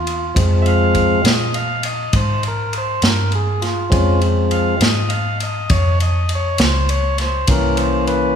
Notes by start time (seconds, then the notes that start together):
Already playing: E2 F4
0.07 ride
0.35 F2 F3 G#3 C4, kick, ride
0.62 E5, ride
0.67 F5
0.95 kick, ride
1.24 A#2 D#5, snare, ride
1.54 F5, ride
1.83 D#5, ride
2.13 G#2 C5, kick, ride
2.43 ride
2.48 A#4
2.73 ride
2.78 C5
3.02 G2 A#4, snare, ride
3.32 G#4, ride
3.62 F4, snare, ride
3.90 F2 F3 G#3 C4 C#4 F4, kick, ride
4.21 ride
4.51 F5, ride
4.80 G#2 D#5, snare, ride
5.09 F5, ride
5.40 D#5, ride
5.70 F2 C#5, kick, ride
6.00 D#5, ride
6.29 ride
6.35 C#5
6.58 C#2, snare, ride
6.64 C5
6.89 C#5, ride
7.18 C5, snare, ride
7.47 C2 E3 A#3 C#4 A#4, kick, ride
7.77 C5, ride
8.07 B4, ride